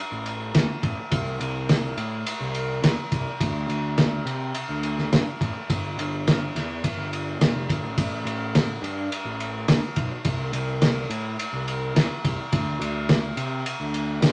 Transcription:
0.12 A1
0.26 ride
0.54 D2, snare, ride
0.83 A1, kick, ride
1.11 C2, kick, ride
1.40 C2, ride
1.69 snare, ride
1.97 A2, ride
2.27 ride
2.40 C2
2.55 ride
2.82 E2, snare, ride
3.12 C2, kick, ride
3.41 D2, kick, ride
3.68 D2, ride
3.98 snare, ride
4.25 C3, ride
4.55 ride
4.69 D2
4.83 ride
4.99 snare
5.12 G2, snare, ride
5.41 A1, kick, ride
5.70 G1, kick, ride
5.98 G1, ride
6.28 snare, ride
6.55 E2, snare, ride
6.84 kick, ride
6.97 G1
7.13 ride
7.40 E1, snare, ride
7.54 F1
7.69 G1, kick, ride
7.83 A1
7.97 A1, kick, ride
8.25 A1, ride
8.55 snare, ride
8.82 G2, ride
9.12 ride
9.25 A1
9.40 ride
9.68 D2, snare, ride
9.96 B1, kick, ride
10.25 C2, kick, ride
10.53 C2, ride
10.82 snare, ride
11.10 A2, ride
11.39 ride
11.53 C2
11.68 ride
11.95 E2, snare, ride
12.25 C2, kick, ride
12.53 D2, kick, ride
12.80 D2, ride
13.09 snare, ride
13.37 C3, ride
13.66 ride
13.80 D2
13.94 ride
14.21 G2, snare, ride

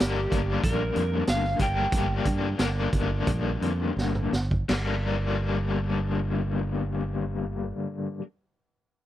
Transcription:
0.00 G1 G2 D3 G3 A#3 D4 G4 A#4, snare, closed hi-hat
0.32 G1, kick, closed hi-hat
0.64 A#1 A#4, kick, closed hi-hat
0.96 F2, closed hi-hat
1.27 G1 F5, snare, closed hi-hat
1.44 snare
1.59 G1 G2 D3 G3 A#3 D4 A#4 G5, kick, closed hi-hat
1.92 G1, kick, closed hi-hat
2.25 G2, kick, closed hi-hat
2.58 G1 G2 D3 G3 A#3 D4 A#4, snare, closed hi-hat
2.93 G1, kick, closed hi-hat
3.27 A#1, kick, closed hi-hat
3.62 F2, closed hi-hat
3.97 G1, snare
4.15 mid tom
4.33 G1, snare
4.51 kick
4.69 G1 G2 D3 G3 A#3 D4 A#4, snare, crash

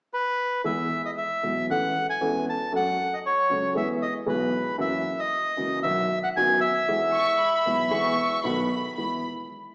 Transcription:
0.14 B4
0.64 E2 E3 G#3 B3 G#4 E5
1.05 D#5
1.18 E5
1.43 B1 B2 E3 G#3 B3 G#4
1.70 A1 A2 E3 A3 C#4 A4 F#5
2.10 G#5
2.21 E1 E2 E3 A3 C#4 A4
2.49 A5
2.72 F#2 F#3 A3 C#4 A4 F#5
3.14 D#5
3.26 C#5
3.49 C#2 C#3 F#3 A3 C#4 A4
3.75 E2 E3 G#3 B3 G#4 E5
4.02 D#5
4.26 B1 B2 E3 G#3 B3 G#4 B4
4.78 F#2 E3 F#3 A#3 C#4 F#4 E5
5.19 D#5
5.57 C#2 C#3 E3 A#3 C#4 F#4
5.83 B1 B2 D#3 F#3 B3 F#4 E5
6.24 F#5
6.36 F#1 F#2 D#3 F#3 B3 F#4 G#5
6.61 E5
6.88 E2 E3 G#3 B3 G#4
7.13 C#6
7.41 B5
7.66 B1 B2 E3 G#3 B3 G#4
7.90 E2 E3 G#3 B3 G#4 C#6
8.44 B1 B2 D#3 A3 B3 F#4 B5
8.96 E2 G#3 B3 E4 B5

